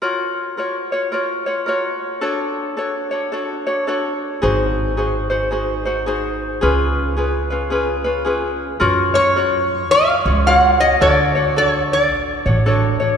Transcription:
0.02 ukulele F4 F#4 A#4 C#5
0.57 ukulele F4 F#4 A#4 C#5
0.92 ukulele F4 F#4 C#5
1.12 ukulele F4 F#4 A#4 C#5
1.46 ukulele F4 F#4 C#5
1.66 ukulele F4 F#4 A#4 C#5
2.21 ukulele D4 F#4 A4 C#5
2.77 ukulele D4 F#4 A4 C#5
3.11 ukulele D4 F#4 C#5
3.32 ukulele D4 F#4 A4 C#5
3.67 ukulele D4 F#4 C#5
3.87 ukulele D4 F#4 A4 C#5
4.42 upright bass G#1, ukulele D#4 F#4 G#4 C5
4.97 ukulele D#4 F#4 G#4 C5
5.30 ukulele D#4 F#4 C5
5.51 ukulele D#4 F#4 G#4 C5
5.85 ukulele D#4 F#4 C5
6.06 ukulele D#4 F#4 G#4 C5
6.61 upright bass C#2, ukulele C#4 F4 G#4 B4
7.16 ukulele C#4 F4 G#4 B4
7.50 ukulele C#4 F4 B4
7.70 ukulele C#4 F4 G#4 B4
8.04 ukulele C#4 F4 B4
8.25 ukulele C#4 F4 G#4 B4
8.80 upright bass F#2, ukulele F4 F#4 A#4 C#5
9.14 ukulele F4 F#4 C#5, resonator guitar played with a steel bar C#5
9.36 ukulele F4 F#4 A#4 C#5
9.91 upright bass C#2, resonator guitar played with a steel bar F5
10.25 upright bass C#2, ukulele F4 F#4 C#5
10.46 ukulele F4 F#4 A#4 C#5, resonator guitar played with a steel bar F#5
10.80 ukulele F4 F#4 C#5, resonator guitar played with a steel bar D#5
11.01 upright bass D2, ukulele D4 F#4 A4 C#5, resonator guitar played with a steel bar D5
11.35 ukulele D4 F#4 C#5
11.56 ukulele D4 F#4 A4, resonator guitar played with a steel bar C#5
11.93 resonator guitar played with a steel bar D5
12.12 upright bass A1
12.46 upright bass A1, ukulele D4 F#4 C#5
12.66 ukulele D4 F#4 A4 C#5
13.00 ukulele D4 F#4 C#5

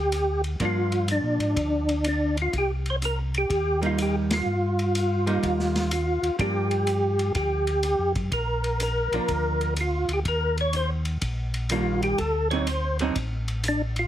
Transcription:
Already playing: tonewheel organ D2 G4
0.12 hi-hat pedal, ride
0.44 ride
0.60 tonewheel organ G2, hollow-body jazz guitar F3 A#3 D4, kick, ride
0.65 tonewheel organ F4
0.92 ride
1.08 tonewheel organ D4, hi-hat pedal, ride
1.23 tonewheel organ A#2
1.39 tonewheel organ G#2, ride
1.56 tonewheel organ D2, kick, ride
1.89 ride
2.04 tonewheel organ D4, hi-hat pedal, ride
2.37 ride
2.42 tonewheel organ F4
2.53 tonewheel organ C2, kick, ride
2.58 tonewheel organ G4
2.86 ride
2.90 tonewheel organ C5
3.02 tonewheel organ A#4, hi-hat pedal, ride
3.34 tonewheel organ G4, ride
3.49 tonewheel organ D#2, kick, ride
3.82 hollow-body jazz guitar G3 A#3 D#4, ride
3.86 tonewheel organ F4
3.98 tonewheel organ G4, hi-hat pedal, ride
4.31 tonewheel organ F4, snare, ride
4.46 tonewheel organ G2
4.79 ride
4.95 hi-hat pedal, ride
5.26 hollow-body jazz guitar G3 A#3 D#4, ride
5.42 tonewheel organ D#2, kick, ride
5.59 snare
5.75 snare, ride
5.91 tonewheel organ F4, hi-hat pedal, ride
6.22 tonewheel organ D#2, ride
6.38 tonewheel organ G2 G4, hollow-body jazz guitar F3 A#3 D4, kick, ride
6.71 ride
6.87 hi-hat pedal, ride
7.19 ride
7.34 tonewheel organ D2 G4, kick, ride
7.67 ride
7.83 hi-hat pedal, ride
7.99 tonewheel organ F2
8.14 tonewheel organ F#2, kick, ride
8.31 tonewheel organ A#1 A#4, kick, ride
8.64 ride
8.80 tonewheel organ A#4, hi-hat pedal, ride
9.12 tonewheel organ A#1, hollow-body jazz guitar F3 A#3 D4, ride
9.28 tonewheel organ D2, kick, ride
9.61 ride
9.76 hi-hat pedal, ride
9.81 tonewheel organ F4
10.08 tonewheel organ D2, ride
10.13 tonewheel organ G4
10.25 tonewheel organ D#2 A#4, kick, ride
10.58 tonewheel organ C#5, ride
10.73 tonewheel organ C5, hi-hat pedal, ride
11.05 ride
11.21 tonewheel organ A#1, kick, ride
11.54 ride
11.69 hollow-body jazz guitar D#3 G3 A#3 D4, tonewheel organ F4, hi-hat pedal, ride
12.02 tonewheel organ G4, ride
12.18 tonewheel organ D2 A4, kick, ride
12.51 hollow-body jazz guitar D3 F#3 C4 D#4, tonewheel organ C#5, ride
12.67 tonewheel organ C5, hi-hat pedal, ride
12.99 hollow-body jazz guitar D3 F#3 C4 D#4, ride
13.15 tonewheel organ A1, kick, ride
13.48 ride
13.64 hi-hat pedal, ride
13.68 tonewheel organ D4
13.96 tonewheel organ F4, ride

